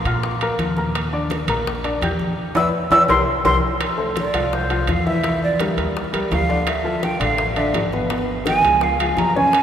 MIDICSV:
0, 0, Header, 1, 5, 480
1, 0, Start_track
1, 0, Tempo, 357356
1, 1280, Time_signature, 4, 2, 24, 8
1, 12934, End_track
2, 0, Start_track
2, 0, Title_t, "Flute"
2, 0, Program_c, 0, 73
2, 3447, Note_on_c, 0, 88, 90
2, 3599, Note_off_c, 0, 88, 0
2, 3914, Note_on_c, 0, 88, 103
2, 4071, Note_off_c, 0, 88, 0
2, 4164, Note_on_c, 0, 84, 85
2, 4317, Note_off_c, 0, 84, 0
2, 4634, Note_on_c, 0, 84, 90
2, 4791, Note_off_c, 0, 84, 0
2, 5618, Note_on_c, 0, 74, 78
2, 6101, Note_on_c, 0, 72, 72
2, 6122, Note_off_c, 0, 74, 0
2, 6581, Note_on_c, 0, 77, 85
2, 6601, Note_off_c, 0, 72, 0
2, 6805, Note_off_c, 0, 77, 0
2, 6813, Note_on_c, 0, 76, 97
2, 7255, Note_off_c, 0, 76, 0
2, 7296, Note_on_c, 0, 74, 85
2, 7514, Note_off_c, 0, 74, 0
2, 8486, Note_on_c, 0, 77, 90
2, 8978, Note_on_c, 0, 76, 80
2, 8998, Note_off_c, 0, 77, 0
2, 9457, Note_on_c, 0, 79, 92
2, 9478, Note_off_c, 0, 76, 0
2, 9679, Note_off_c, 0, 79, 0
2, 9687, Note_on_c, 0, 77, 100
2, 10132, Note_off_c, 0, 77, 0
2, 10164, Note_on_c, 0, 76, 83
2, 10387, Note_off_c, 0, 76, 0
2, 11383, Note_on_c, 0, 80, 110
2, 11859, Note_on_c, 0, 77, 76
2, 11879, Note_off_c, 0, 80, 0
2, 12329, Note_on_c, 0, 82, 94
2, 12350, Note_off_c, 0, 77, 0
2, 12565, Note_off_c, 0, 82, 0
2, 12587, Note_on_c, 0, 80, 95
2, 12934, Note_off_c, 0, 80, 0
2, 12934, End_track
3, 0, Start_track
3, 0, Title_t, "Grand piano"
3, 0, Program_c, 1, 0
3, 83, Note_on_c, 1, 65, 77
3, 87, Note_on_c, 1, 77, 75
3, 92, Note_on_c, 1, 89, 77
3, 476, Note_off_c, 1, 65, 0
3, 478, Note_off_c, 1, 77, 0
3, 481, Note_off_c, 1, 89, 0
3, 566, Note_on_c, 1, 58, 78
3, 570, Note_on_c, 1, 70, 84
3, 573, Note_on_c, 1, 82, 79
3, 957, Note_off_c, 1, 58, 0
3, 959, Note_off_c, 1, 70, 0
3, 961, Note_off_c, 1, 82, 0
3, 1041, Note_on_c, 1, 70, 69
3, 1044, Note_on_c, 1, 58, 76
3, 1050, Note_on_c, 1, 82, 75
3, 1434, Note_off_c, 1, 70, 0
3, 1436, Note_off_c, 1, 58, 0
3, 1440, Note_off_c, 1, 82, 0
3, 1514, Note_on_c, 1, 62, 83
3, 1521, Note_on_c, 1, 74, 84
3, 1526, Note_on_c, 1, 86, 78
3, 1911, Note_off_c, 1, 62, 0
3, 1915, Note_off_c, 1, 74, 0
3, 1918, Note_off_c, 1, 86, 0
3, 1995, Note_on_c, 1, 58, 71
3, 2001, Note_on_c, 1, 70, 76
3, 2008, Note_on_c, 1, 82, 76
3, 2391, Note_off_c, 1, 58, 0
3, 2395, Note_off_c, 1, 70, 0
3, 2399, Note_off_c, 1, 82, 0
3, 2476, Note_on_c, 1, 62, 82
3, 2477, Note_on_c, 1, 74, 81
3, 2485, Note_on_c, 1, 86, 82
3, 2675, Note_off_c, 1, 62, 0
3, 2676, Note_off_c, 1, 74, 0
3, 2680, Note_off_c, 1, 86, 0
3, 2722, Note_on_c, 1, 67, 76
3, 2722, Note_on_c, 1, 79, 73
3, 2732, Note_on_c, 1, 91, 74
3, 3115, Note_off_c, 1, 67, 0
3, 3116, Note_off_c, 1, 79, 0
3, 3121, Note_off_c, 1, 91, 0
3, 3435, Note_on_c, 1, 74, 97
3, 3437, Note_on_c, 1, 71, 104
3, 3437, Note_on_c, 1, 76, 97
3, 3591, Note_off_c, 1, 74, 0
3, 3592, Note_off_c, 1, 71, 0
3, 3592, Note_off_c, 1, 76, 0
3, 3917, Note_on_c, 1, 71, 95
3, 3917, Note_on_c, 1, 74, 104
3, 3919, Note_on_c, 1, 76, 104
3, 4072, Note_off_c, 1, 74, 0
3, 4073, Note_off_c, 1, 71, 0
3, 4074, Note_off_c, 1, 76, 0
3, 4148, Note_on_c, 1, 67, 99
3, 4150, Note_on_c, 1, 70, 105
3, 4154, Note_on_c, 1, 72, 100
3, 4307, Note_off_c, 1, 67, 0
3, 4309, Note_off_c, 1, 70, 0
3, 4311, Note_off_c, 1, 72, 0
3, 4633, Note_on_c, 1, 67, 90
3, 4633, Note_on_c, 1, 70, 93
3, 4640, Note_on_c, 1, 72, 91
3, 4790, Note_off_c, 1, 67, 0
3, 4791, Note_off_c, 1, 70, 0
3, 4795, Note_off_c, 1, 72, 0
3, 5343, Note_on_c, 1, 69, 77
3, 5344, Note_on_c, 1, 57, 81
3, 5351, Note_on_c, 1, 72, 77
3, 5745, Note_off_c, 1, 57, 0
3, 5745, Note_off_c, 1, 69, 0
3, 5750, Note_off_c, 1, 72, 0
3, 5829, Note_on_c, 1, 53, 84
3, 5834, Note_on_c, 1, 65, 82
3, 5835, Note_on_c, 1, 77, 84
3, 6229, Note_off_c, 1, 53, 0
3, 6231, Note_off_c, 1, 65, 0
3, 6232, Note_off_c, 1, 77, 0
3, 6316, Note_on_c, 1, 53, 87
3, 6318, Note_on_c, 1, 65, 86
3, 6323, Note_on_c, 1, 77, 82
3, 6713, Note_off_c, 1, 53, 0
3, 6714, Note_off_c, 1, 65, 0
3, 6717, Note_off_c, 1, 77, 0
3, 6795, Note_on_c, 1, 52, 82
3, 6801, Note_on_c, 1, 64, 83
3, 6801, Note_on_c, 1, 76, 87
3, 6995, Note_off_c, 1, 52, 0
3, 6999, Note_off_c, 1, 64, 0
3, 6999, Note_off_c, 1, 76, 0
3, 7029, Note_on_c, 1, 52, 75
3, 7034, Note_on_c, 1, 64, 84
3, 7036, Note_on_c, 1, 76, 73
3, 7429, Note_off_c, 1, 52, 0
3, 7432, Note_off_c, 1, 64, 0
3, 7433, Note_off_c, 1, 76, 0
3, 7511, Note_on_c, 1, 55, 68
3, 7517, Note_on_c, 1, 67, 73
3, 7518, Note_on_c, 1, 70, 69
3, 7713, Note_off_c, 1, 55, 0
3, 7717, Note_off_c, 1, 67, 0
3, 7717, Note_off_c, 1, 70, 0
3, 7750, Note_on_c, 1, 55, 70
3, 7755, Note_on_c, 1, 67, 66
3, 7758, Note_on_c, 1, 70, 67
3, 8150, Note_off_c, 1, 55, 0
3, 8153, Note_off_c, 1, 67, 0
3, 8154, Note_off_c, 1, 70, 0
3, 8231, Note_on_c, 1, 55, 79
3, 8239, Note_on_c, 1, 67, 77
3, 8244, Note_on_c, 1, 70, 74
3, 8630, Note_off_c, 1, 55, 0
3, 8635, Note_off_c, 1, 67, 0
3, 8638, Note_off_c, 1, 70, 0
3, 8714, Note_on_c, 1, 50, 88
3, 8723, Note_on_c, 1, 62, 88
3, 8723, Note_on_c, 1, 74, 85
3, 9112, Note_off_c, 1, 50, 0
3, 9117, Note_off_c, 1, 62, 0
3, 9117, Note_off_c, 1, 74, 0
3, 9189, Note_on_c, 1, 53, 78
3, 9191, Note_on_c, 1, 65, 76
3, 9198, Note_on_c, 1, 69, 85
3, 9589, Note_off_c, 1, 53, 0
3, 9590, Note_off_c, 1, 65, 0
3, 9594, Note_off_c, 1, 69, 0
3, 9666, Note_on_c, 1, 50, 84
3, 9670, Note_on_c, 1, 74, 86
3, 9675, Note_on_c, 1, 62, 84
3, 10067, Note_off_c, 1, 50, 0
3, 10069, Note_off_c, 1, 74, 0
3, 10072, Note_off_c, 1, 62, 0
3, 10157, Note_on_c, 1, 50, 93
3, 10165, Note_on_c, 1, 62, 91
3, 10167, Note_on_c, 1, 74, 89
3, 10553, Note_off_c, 1, 50, 0
3, 10558, Note_off_c, 1, 62, 0
3, 10559, Note_off_c, 1, 74, 0
3, 10639, Note_on_c, 1, 47, 79
3, 10649, Note_on_c, 1, 59, 89
3, 10653, Note_on_c, 1, 71, 87
3, 10838, Note_off_c, 1, 47, 0
3, 10843, Note_off_c, 1, 59, 0
3, 10846, Note_off_c, 1, 71, 0
3, 10884, Note_on_c, 1, 47, 87
3, 10886, Note_on_c, 1, 59, 83
3, 10891, Note_on_c, 1, 71, 75
3, 11277, Note_off_c, 1, 47, 0
3, 11278, Note_off_c, 1, 59, 0
3, 11281, Note_off_c, 1, 71, 0
3, 11364, Note_on_c, 1, 51, 78
3, 11368, Note_on_c, 1, 63, 77
3, 11372, Note_on_c, 1, 66, 72
3, 11560, Note_off_c, 1, 51, 0
3, 11563, Note_off_c, 1, 63, 0
3, 11565, Note_off_c, 1, 66, 0
3, 11615, Note_on_c, 1, 53, 76
3, 11617, Note_on_c, 1, 65, 70
3, 11625, Note_on_c, 1, 68, 74
3, 12003, Note_off_c, 1, 53, 0
3, 12004, Note_off_c, 1, 65, 0
3, 12009, Note_off_c, 1, 68, 0
3, 12098, Note_on_c, 1, 53, 82
3, 12100, Note_on_c, 1, 65, 82
3, 12103, Note_on_c, 1, 68, 75
3, 12485, Note_off_c, 1, 53, 0
3, 12485, Note_off_c, 1, 65, 0
3, 12487, Note_off_c, 1, 68, 0
3, 12565, Note_on_c, 1, 49, 83
3, 12573, Note_on_c, 1, 61, 85
3, 12577, Note_on_c, 1, 73, 83
3, 12934, Note_off_c, 1, 49, 0
3, 12934, Note_off_c, 1, 61, 0
3, 12934, Note_off_c, 1, 73, 0
3, 12934, End_track
4, 0, Start_track
4, 0, Title_t, "Upright bass"
4, 0, Program_c, 2, 32
4, 68, Note_on_c, 2, 46, 100
4, 744, Note_off_c, 2, 46, 0
4, 793, Note_on_c, 2, 39, 98
4, 1919, Note_off_c, 2, 39, 0
4, 1982, Note_on_c, 2, 34, 99
4, 2661, Note_off_c, 2, 34, 0
4, 2708, Note_on_c, 2, 40, 93
4, 3161, Note_off_c, 2, 40, 0
4, 3427, Note_on_c, 2, 40, 98
4, 3612, Note_off_c, 2, 40, 0
4, 3903, Note_on_c, 2, 40, 91
4, 4090, Note_off_c, 2, 40, 0
4, 4146, Note_on_c, 2, 36, 99
4, 4332, Note_off_c, 2, 36, 0
4, 4634, Note_on_c, 2, 36, 101
4, 4816, Note_off_c, 2, 36, 0
4, 5828, Note_on_c, 2, 36, 97
4, 6505, Note_off_c, 2, 36, 0
4, 6551, Note_on_c, 2, 40, 96
4, 7680, Note_off_c, 2, 40, 0
4, 7753, Note_on_c, 2, 39, 91
4, 8205, Note_off_c, 2, 39, 0
4, 8238, Note_on_c, 2, 39, 75
4, 8464, Note_off_c, 2, 39, 0
4, 8483, Note_on_c, 2, 38, 86
4, 9606, Note_off_c, 2, 38, 0
4, 9668, Note_on_c, 2, 33, 105
4, 10345, Note_off_c, 2, 33, 0
4, 10393, Note_on_c, 2, 32, 95
4, 11520, Note_off_c, 2, 32, 0
4, 11588, Note_on_c, 2, 37, 102
4, 12263, Note_off_c, 2, 37, 0
4, 12314, Note_on_c, 2, 42, 95
4, 12934, Note_off_c, 2, 42, 0
4, 12934, End_track
5, 0, Start_track
5, 0, Title_t, "Drums"
5, 73, Note_on_c, 9, 65, 74
5, 84, Note_on_c, 9, 60, 34
5, 207, Note_off_c, 9, 65, 0
5, 219, Note_off_c, 9, 60, 0
5, 315, Note_on_c, 9, 60, 69
5, 315, Note_on_c, 9, 63, 37
5, 449, Note_off_c, 9, 60, 0
5, 449, Note_off_c, 9, 63, 0
5, 552, Note_on_c, 9, 60, 39
5, 552, Note_on_c, 9, 65, 95
5, 558, Note_on_c, 9, 63, 34
5, 686, Note_off_c, 9, 60, 0
5, 686, Note_off_c, 9, 65, 0
5, 692, Note_off_c, 9, 63, 0
5, 791, Note_on_c, 9, 65, 69
5, 793, Note_on_c, 9, 63, 93
5, 799, Note_on_c, 9, 60, 35
5, 799, Note_on_c, 9, 61, 85
5, 925, Note_off_c, 9, 65, 0
5, 927, Note_off_c, 9, 63, 0
5, 933, Note_off_c, 9, 60, 0
5, 933, Note_off_c, 9, 61, 0
5, 1028, Note_on_c, 9, 63, 77
5, 1046, Note_on_c, 9, 60, 35
5, 1162, Note_off_c, 9, 63, 0
5, 1181, Note_off_c, 9, 60, 0
5, 1272, Note_on_c, 9, 63, 39
5, 1280, Note_on_c, 9, 65, 89
5, 1282, Note_on_c, 9, 60, 67
5, 1406, Note_off_c, 9, 63, 0
5, 1414, Note_off_c, 9, 65, 0
5, 1417, Note_off_c, 9, 60, 0
5, 1517, Note_on_c, 9, 63, 40
5, 1651, Note_off_c, 9, 63, 0
5, 1746, Note_on_c, 9, 63, 86
5, 1757, Note_on_c, 9, 65, 64
5, 1764, Note_on_c, 9, 60, 61
5, 1881, Note_off_c, 9, 63, 0
5, 1891, Note_off_c, 9, 65, 0
5, 1898, Note_off_c, 9, 60, 0
5, 1988, Note_on_c, 9, 63, 38
5, 1988, Note_on_c, 9, 64, 99
5, 1989, Note_on_c, 9, 65, 101
5, 2003, Note_on_c, 9, 60, 33
5, 2122, Note_off_c, 9, 63, 0
5, 2122, Note_off_c, 9, 64, 0
5, 2123, Note_off_c, 9, 65, 0
5, 2137, Note_off_c, 9, 60, 0
5, 2228, Note_on_c, 9, 63, 35
5, 2248, Note_on_c, 9, 60, 73
5, 2363, Note_off_c, 9, 63, 0
5, 2383, Note_off_c, 9, 60, 0
5, 2469, Note_on_c, 9, 63, 36
5, 2476, Note_on_c, 9, 65, 70
5, 2485, Note_on_c, 9, 60, 36
5, 2604, Note_off_c, 9, 63, 0
5, 2611, Note_off_c, 9, 65, 0
5, 2619, Note_off_c, 9, 60, 0
5, 2705, Note_on_c, 9, 63, 87
5, 2719, Note_on_c, 9, 65, 87
5, 2731, Note_on_c, 9, 60, 36
5, 2731, Note_on_c, 9, 61, 83
5, 2839, Note_off_c, 9, 63, 0
5, 2853, Note_off_c, 9, 65, 0
5, 2866, Note_off_c, 9, 60, 0
5, 2866, Note_off_c, 9, 61, 0
5, 2946, Note_on_c, 9, 63, 85
5, 2969, Note_on_c, 9, 60, 38
5, 3080, Note_off_c, 9, 63, 0
5, 3104, Note_off_c, 9, 60, 0
5, 3423, Note_on_c, 9, 63, 117
5, 3428, Note_on_c, 9, 65, 95
5, 3448, Note_on_c, 9, 61, 105
5, 3558, Note_off_c, 9, 63, 0
5, 3562, Note_off_c, 9, 65, 0
5, 3582, Note_off_c, 9, 61, 0
5, 3904, Note_on_c, 9, 63, 119
5, 3917, Note_on_c, 9, 65, 113
5, 3922, Note_on_c, 9, 61, 96
5, 4038, Note_off_c, 9, 63, 0
5, 4051, Note_off_c, 9, 65, 0
5, 4056, Note_off_c, 9, 61, 0
5, 4141, Note_on_c, 9, 63, 104
5, 4157, Note_on_c, 9, 65, 96
5, 4159, Note_on_c, 9, 61, 105
5, 4275, Note_off_c, 9, 63, 0
5, 4291, Note_off_c, 9, 65, 0
5, 4293, Note_off_c, 9, 61, 0
5, 4631, Note_on_c, 9, 65, 86
5, 4635, Note_on_c, 9, 63, 106
5, 4638, Note_on_c, 9, 61, 94
5, 4766, Note_off_c, 9, 65, 0
5, 4770, Note_off_c, 9, 63, 0
5, 4773, Note_off_c, 9, 61, 0
5, 5110, Note_on_c, 9, 63, 35
5, 5111, Note_on_c, 9, 65, 95
5, 5113, Note_on_c, 9, 60, 66
5, 5244, Note_off_c, 9, 63, 0
5, 5245, Note_off_c, 9, 65, 0
5, 5248, Note_off_c, 9, 60, 0
5, 5361, Note_on_c, 9, 63, 33
5, 5495, Note_off_c, 9, 63, 0
5, 5583, Note_on_c, 9, 65, 58
5, 5596, Note_on_c, 9, 60, 65
5, 5596, Note_on_c, 9, 63, 94
5, 5718, Note_off_c, 9, 65, 0
5, 5730, Note_off_c, 9, 60, 0
5, 5730, Note_off_c, 9, 63, 0
5, 5828, Note_on_c, 9, 65, 100
5, 5836, Note_on_c, 9, 60, 32
5, 5838, Note_on_c, 9, 63, 37
5, 5838, Note_on_c, 9, 64, 87
5, 5962, Note_off_c, 9, 65, 0
5, 5970, Note_off_c, 9, 60, 0
5, 5972, Note_off_c, 9, 63, 0
5, 5972, Note_off_c, 9, 64, 0
5, 6080, Note_on_c, 9, 63, 35
5, 6080, Note_on_c, 9, 64, 70
5, 6085, Note_on_c, 9, 60, 64
5, 6214, Note_off_c, 9, 63, 0
5, 6214, Note_off_c, 9, 64, 0
5, 6220, Note_off_c, 9, 60, 0
5, 6316, Note_on_c, 9, 65, 67
5, 6324, Note_on_c, 9, 63, 35
5, 6329, Note_on_c, 9, 60, 34
5, 6450, Note_off_c, 9, 65, 0
5, 6458, Note_off_c, 9, 63, 0
5, 6463, Note_off_c, 9, 60, 0
5, 6547, Note_on_c, 9, 65, 85
5, 6563, Note_on_c, 9, 60, 35
5, 6563, Note_on_c, 9, 61, 80
5, 6564, Note_on_c, 9, 63, 80
5, 6681, Note_off_c, 9, 65, 0
5, 6697, Note_off_c, 9, 60, 0
5, 6697, Note_off_c, 9, 61, 0
5, 6698, Note_off_c, 9, 63, 0
5, 6803, Note_on_c, 9, 60, 36
5, 6807, Note_on_c, 9, 63, 84
5, 6937, Note_off_c, 9, 60, 0
5, 6942, Note_off_c, 9, 63, 0
5, 7032, Note_on_c, 9, 65, 70
5, 7041, Note_on_c, 9, 60, 63
5, 7046, Note_on_c, 9, 63, 33
5, 7166, Note_off_c, 9, 65, 0
5, 7175, Note_off_c, 9, 60, 0
5, 7181, Note_off_c, 9, 63, 0
5, 7284, Note_on_c, 9, 63, 38
5, 7419, Note_off_c, 9, 63, 0
5, 7515, Note_on_c, 9, 65, 89
5, 7525, Note_on_c, 9, 63, 87
5, 7530, Note_on_c, 9, 60, 65
5, 7650, Note_off_c, 9, 65, 0
5, 7660, Note_off_c, 9, 63, 0
5, 7665, Note_off_c, 9, 60, 0
5, 7762, Note_on_c, 9, 65, 71
5, 7767, Note_on_c, 9, 63, 38
5, 7775, Note_on_c, 9, 60, 33
5, 7897, Note_off_c, 9, 65, 0
5, 7902, Note_off_c, 9, 63, 0
5, 7909, Note_off_c, 9, 60, 0
5, 8008, Note_on_c, 9, 63, 31
5, 8015, Note_on_c, 9, 60, 68
5, 8143, Note_off_c, 9, 63, 0
5, 8149, Note_off_c, 9, 60, 0
5, 8244, Note_on_c, 9, 65, 86
5, 8252, Note_on_c, 9, 63, 38
5, 8260, Note_on_c, 9, 60, 37
5, 8378, Note_off_c, 9, 65, 0
5, 8386, Note_off_c, 9, 63, 0
5, 8394, Note_off_c, 9, 60, 0
5, 8479, Note_on_c, 9, 63, 85
5, 8486, Note_on_c, 9, 65, 68
5, 8486, Note_on_c, 9, 66, 73
5, 8497, Note_on_c, 9, 60, 35
5, 8497, Note_on_c, 9, 61, 86
5, 8613, Note_off_c, 9, 63, 0
5, 8620, Note_off_c, 9, 65, 0
5, 8620, Note_off_c, 9, 66, 0
5, 8631, Note_off_c, 9, 60, 0
5, 8631, Note_off_c, 9, 61, 0
5, 8728, Note_on_c, 9, 63, 86
5, 8729, Note_on_c, 9, 60, 33
5, 8862, Note_off_c, 9, 63, 0
5, 8864, Note_off_c, 9, 60, 0
5, 8955, Note_on_c, 9, 65, 102
5, 8964, Note_on_c, 9, 60, 70
5, 8971, Note_on_c, 9, 63, 35
5, 9090, Note_off_c, 9, 65, 0
5, 9099, Note_off_c, 9, 60, 0
5, 9105, Note_off_c, 9, 63, 0
5, 9218, Note_on_c, 9, 63, 34
5, 9352, Note_off_c, 9, 63, 0
5, 9442, Note_on_c, 9, 60, 61
5, 9442, Note_on_c, 9, 63, 91
5, 9444, Note_on_c, 9, 65, 64
5, 9576, Note_off_c, 9, 60, 0
5, 9576, Note_off_c, 9, 63, 0
5, 9578, Note_off_c, 9, 65, 0
5, 9680, Note_on_c, 9, 60, 36
5, 9682, Note_on_c, 9, 65, 101
5, 9688, Note_on_c, 9, 63, 36
5, 9688, Note_on_c, 9, 64, 88
5, 9814, Note_off_c, 9, 60, 0
5, 9816, Note_off_c, 9, 65, 0
5, 9823, Note_off_c, 9, 63, 0
5, 9823, Note_off_c, 9, 64, 0
5, 9918, Note_on_c, 9, 60, 73
5, 9927, Note_on_c, 9, 63, 33
5, 10053, Note_off_c, 9, 60, 0
5, 10061, Note_off_c, 9, 63, 0
5, 10159, Note_on_c, 9, 65, 66
5, 10166, Note_on_c, 9, 63, 37
5, 10170, Note_on_c, 9, 60, 34
5, 10293, Note_off_c, 9, 65, 0
5, 10300, Note_off_c, 9, 63, 0
5, 10304, Note_off_c, 9, 60, 0
5, 10402, Note_on_c, 9, 65, 90
5, 10402, Note_on_c, 9, 66, 67
5, 10403, Note_on_c, 9, 60, 35
5, 10403, Note_on_c, 9, 61, 84
5, 10410, Note_on_c, 9, 63, 91
5, 10536, Note_off_c, 9, 65, 0
5, 10536, Note_off_c, 9, 66, 0
5, 10537, Note_off_c, 9, 60, 0
5, 10537, Note_off_c, 9, 61, 0
5, 10544, Note_off_c, 9, 63, 0
5, 10643, Note_on_c, 9, 60, 32
5, 10654, Note_on_c, 9, 63, 83
5, 10777, Note_off_c, 9, 60, 0
5, 10789, Note_off_c, 9, 63, 0
5, 10882, Note_on_c, 9, 60, 76
5, 10882, Note_on_c, 9, 65, 65
5, 11016, Note_off_c, 9, 60, 0
5, 11017, Note_off_c, 9, 65, 0
5, 11132, Note_on_c, 9, 63, 38
5, 11266, Note_off_c, 9, 63, 0
5, 11358, Note_on_c, 9, 60, 64
5, 11373, Note_on_c, 9, 65, 92
5, 11375, Note_on_c, 9, 63, 90
5, 11493, Note_off_c, 9, 60, 0
5, 11507, Note_off_c, 9, 65, 0
5, 11509, Note_off_c, 9, 63, 0
5, 11603, Note_on_c, 9, 60, 32
5, 11613, Note_on_c, 9, 65, 76
5, 11737, Note_off_c, 9, 60, 0
5, 11747, Note_off_c, 9, 65, 0
5, 11837, Note_on_c, 9, 60, 69
5, 11859, Note_on_c, 9, 63, 35
5, 11971, Note_off_c, 9, 60, 0
5, 11994, Note_off_c, 9, 63, 0
5, 12084, Note_on_c, 9, 60, 36
5, 12092, Note_on_c, 9, 65, 96
5, 12101, Note_on_c, 9, 63, 37
5, 12219, Note_off_c, 9, 60, 0
5, 12226, Note_off_c, 9, 65, 0
5, 12235, Note_off_c, 9, 63, 0
5, 12314, Note_on_c, 9, 60, 34
5, 12314, Note_on_c, 9, 61, 86
5, 12334, Note_on_c, 9, 63, 93
5, 12337, Note_on_c, 9, 65, 68
5, 12337, Note_on_c, 9, 66, 65
5, 12448, Note_off_c, 9, 60, 0
5, 12448, Note_off_c, 9, 61, 0
5, 12469, Note_off_c, 9, 63, 0
5, 12471, Note_off_c, 9, 65, 0
5, 12471, Note_off_c, 9, 66, 0
5, 12569, Note_on_c, 9, 60, 31
5, 12581, Note_on_c, 9, 63, 83
5, 12703, Note_off_c, 9, 60, 0
5, 12715, Note_off_c, 9, 63, 0
5, 12803, Note_on_c, 9, 60, 72
5, 12818, Note_on_c, 9, 63, 37
5, 12821, Note_on_c, 9, 65, 93
5, 12934, Note_off_c, 9, 60, 0
5, 12934, Note_off_c, 9, 63, 0
5, 12934, Note_off_c, 9, 65, 0
5, 12934, End_track
0, 0, End_of_file